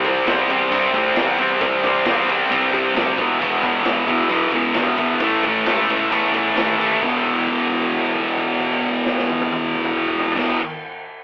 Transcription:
0.00 0.19 C2 medium
0.04 0.27 C3 medium
0.04 0.27 G3 medium
0.04 0.29 C4 medium
0.04 kick medium
0.04 ride medium
0.26 0.63 E2 medium
0.26 0.49 C3 medium
0.26 0.50 G3 medium
0.26 0.51 C4 medium
0.26 snare loud
0.26 ride medium
0.50 0.71 C3 medium
0.50 0.72 G3 medium
0.50 0.74 C4 loud
0.50 ride medium
0.71 0.90 G2 loud
0.71 0.94 C3 medium
0.71 0.95 G3 loud
0.71 ride medium
0.75 0.96 C4 loud
0.93 1.12 A2 medium
0.93 1.17 C3 medium
0.93 1.17 G3 medium
0.93 kick medium
0.93 ride medium
0.97 1.18 C4 loud
1.15 1.53 E2 medium
1.15 1.38 C3 medium
1.15 1.39 G3 medium
1.15 snare loud
1.15 ride medium
1.19 1.40 C4 medium
1.38 1.60 C3 medium
1.38 1.61 G3 medium
1.38 1.62 C4 medium
1.38 ride medium
1.61 1.98 A1 medium
1.61 1.82 C3 medium
1.61 1.83 G3 loud
1.61 1.85 C4 loud
1.61 kick loud
1.61 ride loud
1.83 2.06 C3 medium
1.83 2.08 G3 medium
1.83 2.09 C4 medium
1.83 kick medium
1.83 ride medium
2.05 2.43 E2 loud
2.05 2.27 C3 medium
2.05 2.29 G3 medium
2.05 snare loud
2.05 ride loud
2.10 2.30 C4 medium
2.29 2.49 C3 medium
2.29 2.50 G3 medium
2.29 2.51 C4 medium
2.29 ride medium
2.50 2.88 G2 medium
2.50 2.71 C3 medium
2.50 2.72 G3 medium
2.50 2.73 C4 loud
2.50 ride loud
2.72 2.93 C3 medium
2.72 2.94 G3 medium
2.72 2.95 C4 medium
2.72 kick medium
2.72 ride medium
2.94 3.13 D2 medium
2.94 3.17 C3 medium
2.94 3.17 G3 medium
2.94 3.17 C4 medium
2.94 snare loud
2.94 ride medium
3.17 3.37 E1 medium
3.17 3.38 E2 medium
3.17 3.39 B2 medium
3.17 3.41 E3 loud
3.17 kick loud
3.17 ride medium
3.39 3.77 E1 medium
3.39 3.61 E2 loud
3.39 3.62 B2 loud
3.39 3.64 E3 loud
3.39 ride medium
3.62 3.82 E2 medium
3.62 3.84 B2 medium
3.62 3.86 E3 medium
3.62 kick medium
3.62 ride medium
3.83 4.22 G#1 medium
3.83 4.06 E2 medium
3.83 4.06 B2 medium
3.83 4.08 E3 medium
3.83 snare loud
3.83 ride medium
4.07 4.28 E2 medium
4.07 4.29 B2 medium
4.07 4.31 E3 medium
4.07 ride medium
4.28 4.48 B1 medium
4.28 4.51 E2 medium
4.28 4.52 B2 loud
4.28 4.53 E3 loud
4.28 ride medium
4.51 4.71 C#2 medium
4.51 4.75 E2 medium
4.51 4.75 B2 medium
4.51 4.77 E3 medium
4.51 kick medium
4.51 ride medium
4.74 5.12 G#1 medium
4.74 4.97 E2 medium
4.74 4.98 B2 medium
4.74 snare loud
4.74 ride medium
4.78 5.00 E3 medium
4.98 5.20 E2 medium
4.98 5.20 B2 medium
4.98 5.22 E3 medium
4.98 ride medium
5.20 5.58 A1 medium
5.20 5.43 A2 medium
5.20 5.44 E3 medium
5.20 5.45 A3 loud
5.20 kick loud
5.20 ride medium
5.43 5.64 A2 medium
5.43 5.65 E3 medium
5.43 5.66 A3 medium
5.43 kick medium
5.43 ride medium
5.65 6.03 C#2 medium
5.65 5.87 A2 medium
5.65 5.89 E3 medium
5.65 5.89 A3 medium
5.65 snare loud
5.65 ride loud
5.88 6.10 A2 medium
5.88 6.11 E3 medium
5.88 6.12 A3 medium
5.88 ride medium
6.11 6.48 E2 medium
6.11 6.32 A2 medium
6.11 6.32 E3 medium
6.11 6.33 A3 loud
6.11 ride loud
6.33 6.54 A2 medium
6.33 6.55 E3 medium
6.33 6.56 A3 medium
6.33 kick medium
6.33 ride medium
6.55 6.94 D#2 medium
6.55 6.78 A2 medium
6.55 6.79 E3 medium
6.55 6.80 A3 medium
6.55 snare loud
6.55 ride medium
6.79 7.00 A2 medium
6.79 7.01 E3 medium
6.79 7.01 A3 medium
6.79 ride medium
7.01 10.28 E1 medium
7.01 10.36 E2 medium
7.01 10.38 B2 medium
7.01 10.40 E3 loud
7.01 kick loud
7.01 crash medium
7.25 kick medium
7.25 crash soft
7.37 crash soft
7.47 kick medium
7.47 crash soft
7.59 crash soft
7.70 kick medium
7.70 crash soft
7.82 crash soft
7.92 kick medium
7.92 crash soft
8.05 crash soft
8.15 kick medium
8.15 crash soft
8.28 crash soft
8.38 kick medium
8.38 crash soft
8.50 crash medium
8.60 kick medium
8.60 crash medium
8.73 crash medium
8.83 kick medium
8.83 crash medium
8.95 crash soft
9.06 snare medium
9.18 snare medium
9.29 high tom medium
9.41 high tom medium
9.52 high tom medium
9.64 mid tom medium
9.75 mid tom loud
9.85 mid tom loud
9.97 mid tom medium
10.07 mid tom medium
10.19 floor tom loud
10.32 floor tom loud
10.36 10.56 E1 medium
10.36 10.57 E2 medium
10.36 10.58 B2 loud
10.36 kick loud
10.36 snare loud
10.36 crash loud
10.40 10.59 E3 loud

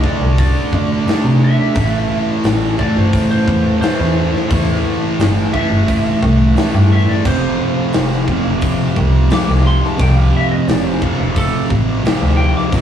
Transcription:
0.03 1.06 D3 medium
0.03 1.09 A3 medium
0.03 1.05 D4 medium
0.03 0.38 D5 medium
0.03 kick medium
0.21 0.53 C2 medium
0.38 1.06 D5 loud
0.38 kick loud
0.38 open hi-hat medium
0.73 1.05 F2 medium
0.73 kick medium
1.07 1.74 D3 medium
1.07 1.77 A3 medium
1.07 1.76 D4 medium
1.07 snare loud
1.07 open hi-hat medium
1.24 1.56 C3 medium
1.44 2.33 E5 loud
1.75 2.08 A1 loud
1.75 2.82 A2 loud
1.75 2.80 E3 medium
1.75 2.78 A3 loud
1.75 kick loud
1.75 open hi-hat medium
2.33 2.77 D5 loud
2.44 2.93 A1 loud
2.44 snare loud
2.44 open hi-hat medium
2.78 3.80 A2 medium
2.78 3.83 E3 medium
2.78 3.84 A3 loud
2.78 2.98 D5 medium
2.78 kick medium
2.96 3.28 G1 medium
2.96 3.30 C5 medium
3.13 kick loud
3.13 open hi-hat medium
3.31 3.80 C5 loud
3.47 3.80 E2 loud
3.47 kick medium
3.81 4.48 A2 medium
3.81 4.50 E3 medium
3.81 4.52 A3 medium
3.81 5.16 C5 loud
3.81 snare loud
3.81 open hi-hat medium
4.00 4.32 E2 medium
4.36 snare soft
4.49 4.83 E2 loud
4.49 5.52 A2 medium
4.49 5.55 E3 loud
4.49 5.53 A3 loud
4.49 kick loud
4.49 open hi-hat medium
5.19 5.52 G1 loud
5.19 snare loud
5.19 open hi-hat medium
5.39 snare soft
5.53 6.54 A2 medium
5.53 6.57 E3 medium
5.53 6.59 A3 medium
5.53 6.87 E5 loud
5.53 kick medium
5.71 6.03 G1 medium
5.88 kick loud
5.88 open hi-hat medium
6.23 6.55 C2 loud
6.23 kick medium
6.56 7.23 A2 medium
6.56 7.27 E3 medium
6.56 10.09 A3 medium
6.56 snare loud
6.56 open hi-hat medium
6.75 7.06 G2 medium
6.93 7.09 E5 loud
7.09 7.26 D5 medium
7.09 snare soft
7.24 7.57 F1 loud
7.24 8.31 F2 medium
7.24 8.27 C3 loud
7.24 8.27 F3 medium
7.24 8.60 C5 loud
7.24 kick loud
7.24 crash medium
7.93 8.42 F1 loud
7.93 snare loud
7.93 open hi-hat medium
8.12 snare soft
8.28 9.29 F2 medium
8.28 9.30 C3 medium
8.28 9.29 F3 medium
8.28 kick medium
8.45 8.77 E1 medium
8.62 kick loud
8.62 open hi-hat medium
8.96 9.29 C2 loud
8.96 kick medium
9.30 9.97 F2 medium
9.30 9.98 C3 medium
9.30 9.99 F3 medium
9.30 9.65 D6 medium
9.30 snare loud
9.30 open hi-hat medium
9.49 9.80 C2 medium
9.67 9.85 C6 loud
9.84 10.01 A5 medium
9.84 snare soft
9.98 10.31 C2 loud
9.98 10.99 F2 medium
9.98 11.00 C3 loud
9.98 11.00 F3 loud
9.98 10.16 G5 medium
9.98 kick loud
9.98 open hi-hat medium
10.16 10.33 F5 medium
10.37 10.52 E5 medium
10.51 10.67 D#5 medium
10.67 10.99 E1 medium
10.67 10.85 D5 loud
10.67 snare loud
10.67 open hi-hat medium
10.85 11.01 C5 loud
11.01 12.02 F2 medium
11.01 12.03 C3 medium
11.01 12.02 F3 medium
11.01 11.35 A4 medium
11.01 kick medium
11.20 11.51 E1 medium
11.36 11.70 A4 loud
11.36 kick loud
11.36 open hi-hat medium
11.70 12.02 A1 loud
11.70 kick medium
12.04 12.70 F2 medium
12.04 12.71 C3 medium
12.04 12.72 F3 medium
12.04 snare loud
12.04 open hi-hat medium
12.22 12.53 D2 medium
12.37 12.54 G5 loud
12.57 12.73 D6 medium
12.57 snare soft
12.72 12.81 E1 loud
12.72 12.81 E2 loud
12.72 12.81 B2 loud
12.72 12.81 E3 loud
12.72 kick loud
12.72 open hi-hat medium

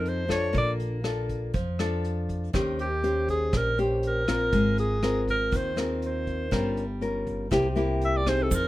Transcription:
0.00 0.51 F2 medium
0.00 0.52 F3 medium
0.00 0.26 C4 medium
0.00 0.26 D#4 medium
0.00 0.26 A4 medium
0.05 0.31 C5 medium
0.05 closed hi-hat soft
0.28 1.00 D4 medium
0.28 1.00 F4 medium
0.28 1.00 A4 medium
0.28 0.54 C#5 medium
0.28 kick soft
0.28 cross-stick medium
0.28 closed hi-hat soft
0.53 1.50 A#1 medium
0.53 1.51 A#3 soft
0.53 kick medium
0.53 closed hi-hat medium
0.58 0.72 D5 medium
0.80 closed hi-hat soft
1.04 1.54 D4 soft
1.04 1.54 F4 medium
1.04 1.54 A4 medium
1.04 cross-stick medium
1.04 closed hi-hat soft
1.29 kick soft
1.29 closed hi-hat soft
1.54 2.50 F2 medium
1.54 2.51 F3 soft
1.54 kick medium
1.54 closed hi-hat medium
1.79 2.50 D4 medium
1.79 2.50 F4 medium
1.79 2.50 A4 medium
1.79 cross-stick medium
1.79 closed hi-hat soft
2.04 closed hi-hat soft
2.29 kick soft
2.29 closed hi-hat soft
2.53 3.49 D#2 medium
2.53 3.51 D#3 medium
2.53 2.86 C#4 medium
2.53 2.86 G4 medium
2.53 2.86 C5 medium
2.53 kick medium
2.53 cross-stick medium
2.53 closed hi-hat medium
2.79 3.26 G4 medium
2.79 closed hi-hat soft
3.03 3.74 C#4 medium
3.03 3.74 G4 soft
3.03 3.74 C5 medium
3.03 closed hi-hat soft
3.28 3.59 G#4 medium
3.28 kick soft
3.28 closed hi-hat soft
3.53 4.49 A#1 medium
3.53 4.50 A#2 medium
3.53 kick medium
3.53 cross-stick medium
3.53 closed hi-hat medium
3.57 3.80 A#4 medium
3.78 4.24 C#4 medium
3.78 4.24 G4 medium
3.78 3.97 G4 soft
3.78 4.24 C5 medium
3.78 closed hi-hat soft
4.03 closed hi-hat soft
4.07 4.79 A#4 medium
4.28 4.98 C4 medium
4.28 4.99 F4 medium
4.28 4.99 A#4 medium
4.28 kick soft
4.28 cross-stick medium
4.28 closed hi-hat soft
4.53 5.48 G#1 medium
4.53 5.50 G#3 medium
4.53 kick medium
4.53 closed hi-hat medium
4.78 5.25 G#4 medium
4.78 closed hi-hat soft
5.02 5.73 C4 medium
5.02 5.73 F4 medium
5.02 5.73 A#4 medium
5.02 cross-stick medium
5.02 closed hi-hat soft
5.28 5.58 A#4 medium
5.28 kick soft
5.28 closed hi-hat soft
5.52 6.48 D#2 medium
5.52 6.49 D#3 medium
5.52 kick medium
5.52 closed hi-hat medium
5.56 5.79 C5 medium
5.76 6.47 C4 medium
5.76 6.48 F4 medium
5.76 5.96 G#4 soft
5.76 6.48 A#4 medium
5.76 cross-stick medium
5.76 closed hi-hat soft
6.02 closed hi-hat soft
6.06 6.79 C5 medium
6.27 kick soft
6.27 closed hi-hat soft
6.51 7.47 G1 medium
6.51 7.49 G3 soft
6.51 6.84 C#4 medium
6.51 6.84 F4 soft
6.51 6.84 A#4 medium
6.51 kick medium
6.51 cross-stick medium
6.51 closed hi-hat medium
6.77 closed hi-hat soft
7.01 7.49 C#4 soft
7.01 7.49 F4 soft
7.01 7.50 A#4 soft
7.01 closed hi-hat soft
7.27 kick soft
7.27 closed hi-hat soft
7.51 8.47 C2 medium
7.51 8.48 C3 medium
7.51 7.66 A#3 medium
7.51 7.66 E4 soft
7.51 7.66 G4 medium
7.51 kick medium
7.51 cross-stick medium
7.51 closed hi-hat medium
7.76 8.22 A#3 medium
7.76 8.22 E4 medium
7.76 8.22 G4 medium
7.76 closed hi-hat soft
8.01 8.18 E5 medium
8.01 closed hi-hat soft
8.17 8.30 D5 medium
8.26 8.68 C4 medium
8.26 8.68 D#4 medium
8.26 8.68 G#4 medium
8.26 8.44 C5 medium
8.26 kick soft
8.26 cross-stick medium
8.26 closed hi-hat soft
8.43 8.57 A4 medium
8.51 8.68 F2 medium
8.51 8.68 F3 medium
8.51 kick medium
8.51 closed hi-hat medium
8.51 shaker medium
8.55 8.68 A#4 medium

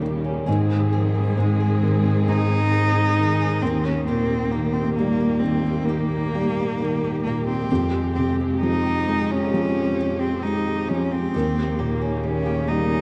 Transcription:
0.00 0.44 D#2 soft
0.00 0.44 D#2 medium
0.00 0.44 C#3 soft
0.00 0.02 D#3 soft
0.00 1.37 D#3 medium
0.00 7.67 D#3 medium
0.00 0.46 D#3 soft
0.00 0.49 G3 soft
0.00 0.56 A#3 soft
0.00 0.23 C#4 soft
0.00 0.44 G4 medium
0.00 0.47 G4 soft
0.24 0.56 C#4 soft
0.46 2.27 G#2 medium
0.46 1.37 G#2 soft
0.46 3.60 G#2 medium
0.46 3.60 C4 medium
0.46 0.91 G#4 medium
0.46 3.60 G#4 medium
0.70 1.82 C4 soft
0.93 1.82 D#3 soft
0.93 1.18 F3 medium
0.93 1.59 G#4 soft
1.15 1.40 G3 medium
1.15 2.05 D#4 soft
1.37 2.27 G#2 soft
1.37 3.17 G#3 medium
1.37 2.30 G#3 medium
1.60 2.27 G#4 soft
1.83 3.17 D#3 soft
1.83 2.49 C4 soft
2.06 2.96 D#4 soft
2.28 3.71 G#2 medium
2.28 3.58 G#2 soft
2.28 3.64 D#4 medium
2.28 2.72 G#4 medium
2.50 3.71 C4 soft
2.73 3.39 G#4 soft
2.96 3.85 D#4 soft
3.18 3.61 D#3 soft
3.18 3.62 G#3 soft
3.41 3.71 G#4 soft
3.62 7.67 D#2 medium
3.62 7.21 D#2 soft
3.62 4.06 D#3 medium
3.62 7.67 A#3 soft
3.62 3.86 C4 medium
3.62 13.01 G4 medium
3.84 4.06 C#4 medium
3.84 4.75 D#4 soft
4.07 5.85 A#2 soft
4.07 5.87 D#3 medium
4.07 4.52 C4 medium
4.07 4.52 G4 medium
4.31 4.98 A#3 soft
4.51 5.42 D#3 soft
4.51 4.75 A#3 medium
4.51 5.20 G4 soft
4.73 4.94 C4 medium
4.73 5.65 D#4 soft
4.95 5.41 A#3 medium
4.95 5.42 A#3 soft
5.00 6.33 G3 soft
5.21 5.89 G4 soft
5.39 5.87 C4 medium
5.43 6.80 D#3 soft
5.43 6.10 A#3 soft
5.66 6.56 D#4 soft
5.85 7.80 D#3 medium
5.85 7.23 A#3 medium
5.89 6.34 G4 soft
6.11 6.79 A#3 soft
6.35 7.67 G3 soft
6.35 7.04 G4 soft
6.57 7.47 D#4 soft
6.81 7.69 D#3 soft
6.81 7.25 A#3 soft
7.04 7.71 G4 soft
7.23 7.70 A#2 soft
7.23 7.45 A#3 medium
7.23 7.80 A#3 soft
7.48 8.12 C4 medium
7.48 7.80 D#4 soft
7.71 9.53 F2 medium
7.71 11.31 F2 medium
7.71 11.31 F2 soft
7.71 11.31 F3 soft
7.71 11.31 G#3 soft
7.71 8.16 G4 medium
7.94 9.08 G#3 soft
8.15 9.96 C3 soft
8.15 8.35 C4 medium
8.15 8.85 G4 soft
8.40 9.31 C4 soft
8.61 9.52 F3 soft
8.61 10.44 F3 soft
8.61 9.32 D#4 medium
8.86 9.54 G4 soft
9.08 10.43 G#3 soft
9.08 9.76 G#3 soft
9.31 10.22 C#4 medium
9.54 11.44 F2 medium
9.54 10.89 F3 soft
9.54 10.00 G4 soft
9.77 10.88 G#3 soft
10.00 10.67 G4 soft
10.21 10.44 C4 medium
10.21 11.11 C4 soft
10.43 11.34 F3 soft
10.43 11.32 G#3 soft
10.43 10.90 D#4 medium
10.67 11.34 G4 soft
10.88 11.34 F3 soft
10.88 11.44 G#3 soft
10.88 11.13 C#4 medium
11.12 11.81 C4 medium
11.12 11.44 C4 soft
11.34 13.01 D#2 medium
11.34 13.01 D#2 soft
11.34 13.01 C#3 soft
11.34 13.01 D#3 medium
11.34 13.01 D#3 soft
11.34 11.78 G4 medium
11.56 12.22 A#3 soft
11.79 13.01 A#2 soft
11.79 12.26 A#3 medium
11.79 12.45 G4 soft
12.02 12.90 C#4 soft
12.23 13.01 D#3 soft
12.23 12.66 A#3 soft
12.23 12.70 C#4 medium
12.46 13.01 G4 soft
12.68 13.01 G3 soft
12.68 13.01 A#3 soft
12.68 13.01 D#4 medium
12.91 13.01 C#4 soft

